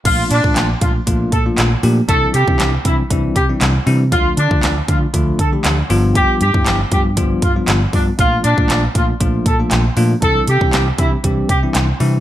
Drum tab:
CC |x---------------|----------------|----------------|----------------|
HH |x-x-x-x-x-x-x-o-|x-x-x-x-x-x-x-o-|x-x-x-x-x-x-x-o-|x-x-x-x-x-x-x-o-|
CP |----x-------x---|----x-------x---|----x-------x---|----x-------x---|
SD |----o-------o---|----o-------o---|----o-------o---|----o-------o---|
BD |o--o--o-o-o-----|o--o--o-o-o-----|o--o--o-o-o-----|o--o--o-o-o---o-|

CC |----------------|----------------|
HH |x-x-x-x-x-x-x-o-|x-x-x-x-x-x-x-o-|
CP |----x-------x---|----x-------x---|
SD |----o-------o---|----o-------o---|
BD |o--o--o-o-o-----|o--o--o-o-o-----|